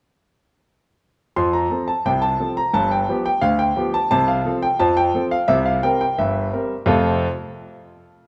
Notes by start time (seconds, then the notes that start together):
1.36 F2 F3 C6
1.53 A#5
1.70 F3 C4 A4
1.88 A5
2.05 C2 C3 G5
2.22 A5
2.40 F3 C4 A4
2.57 A#5
2.74 G1 G2 A5
2.91 G5
3.08 F3 B3 G4
3.26 G5
3.41 D2 D3 F5
3.59 G5
3.76 F3 B3 G4
3.94 A5
4.11 C2 C3 A5
4.28 F5
4.45 F3 C4 A4
4.62 G5
4.79 F2 F3 A5
4.97 G5
5.14 F3 C4 A4
5.31 F5
5.48 C2 C3 E5
5.66 F5
5.83 G3 C4 A#4 G5
6.01 G5
6.18 G1 G2 E5
6.53 G3 C4 A#4
6.86 F2 C3 A3 C4 F4 A4 F5